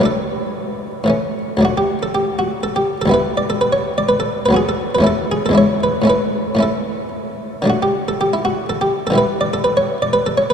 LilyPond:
<<
  \new Staff \with { instrumentName = "Harpsichord" } { \time 3/4 \key d \major \tempo 4 = 121 a'2~ a'8 r8 | fis'16 g'8 a'16 g'8 fis'8 a'16 g'8 a'16 | b'8 d''16 a'16 b'16 cis''8 d''16 b'16 a'8 b'16 | \key a \major gis'16 a'8 b'16 a'8 gis'16 a'16 cis''8 b'8 |
b'4 a'4 r4 | \key d \major fis'16 g'8 a'16 g'16 e'16 fis'8 a'16 g'8 a'16 | b'8 d''16 a'16 b'16 cis''8 d''16 b'16 a'16 cis''16 b'16 | }
  \new Staff \with { instrumentName = "Harpsichord" } { \time 3/4 \key d \major <a, fis a d'>2 <a, e a cis'>4 | <d, fis a d'>2. | <d, g b e'>2. | \key a \major <d, fis b fis'>4 <e, a cis' e'>4 <e, gis d' e'>4 |
<a, a cis' e'>4 <a, a cis' e'>2 | \key d \major <d fis a d'>2. | <d e g e'>2. | }
>>